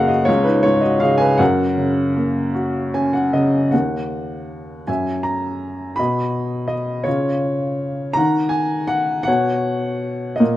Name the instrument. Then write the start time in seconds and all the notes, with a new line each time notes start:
upright piano
Already playing: F#2 C#3 A#3 F#4 G#4 A#4 D#5 F5 F#5
0.08 F#4 D#5
0.25 C#2 F4 C#5
0.44 D#4 B4
0.63 G#2 F4 C#5
0.81 F#4 D#5
1.00 C#3 G#4 F5
1.18 B4 G#5
1.38 F#2 A#4 F#5
1.77 C#3
2.16 A#3
2.54 F#4
2.94 C#4 G#5
3.13 F#5
3.33 C#3 D#5
3.71 D#2 A#4 F#5
4.87 F#2 E5 G#5
5.23 A#5
5.96 B2 D#5 B5
6.68 D#5
7.04 C#3 F4 C#5
8.13 D#3 F#5 A#5
8.49 G#5
8.88 F#5
9.23 F#5
9.28 B2 C#5
10.36 A#4 D#5
10.40 A#2